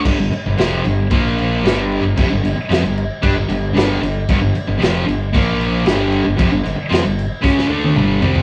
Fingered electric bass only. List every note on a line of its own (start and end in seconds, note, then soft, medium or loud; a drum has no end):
0.05 0.17 G1 medium
0.18 0.30 G1 medium
0.45 0.57 G1 medium
0.59 0.83 F1 medium
0.85 1.09 G1 medium
1.11 1.60 A#1 medium
1.63 2.01 G1 loud
2.03 2.16 G1 medium
2.18 2.30 F1 medium
2.30 2.43 G1 medium
2.44 2.56 G1 medium
2.70 2.82 F2 medium
2.83 3.08 G1 medium
3.23 3.34 G2 loud
3.35 3.48 G1 medium
3.48 3.73 G1 medium
3.74 4.00 G1 loud
4.01 4.26 G1 medium
4.29 4.41 G1 loud
4.42 4.54 G1 medium
4.56 muted fingered electric bass stroke soft
4.68 4.81 G1 medium
4.82 5.06 F1 loud
5.08 5.32 G1 medium
5.35 5.84 A#1 loud
5.86 6.23 G1 loud
6.26 6.38 G1 medium
6.39 6.51 F1 loud
6.53 6.64 G1 medium
6.65 6.78 G1 medium
6.78 muted fingered electric bass stroke soft
6.91 7.04 F2 medium
7.05 7.29 G1 medium
7.43 7.68 C#2 loud
7.69 7.94 D2 medium
7.95 8.20 G1 loud
8.22 8.42 C2 medium